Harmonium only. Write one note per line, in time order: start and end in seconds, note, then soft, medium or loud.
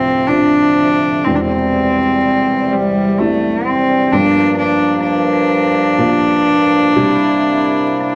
0.00 1.24 D2 medium
0.00 1.24 C3 medium
0.00 1.24 F3 medium
1.26 4.10 E2 medium
1.26 4.10 C3 medium
1.26 4.10 G3 medium
4.12 6.93 G2 medium
4.12 6.93 F3 medium
4.12 8.15 A#3 medium
6.92 8.15 C3 medium
6.92 8.15 E4 medium